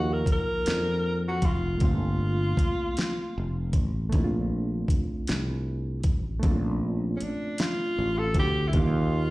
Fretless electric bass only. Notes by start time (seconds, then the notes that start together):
Already playing: D#2
0.27 muted fretless electric bass stroke
0.68 F2
1.43 F1
1.82 G1
2.58 muted fretless electric bass stroke
3.38 F1
3.74 A1
4.14 A#1
4.89 muted fretless electric bass stroke
5.30 C2
6.05 A1
6.44 A#1
7.22 muted fretless electric bass stroke
7.99 A1
8.36 D2
8.75 D#2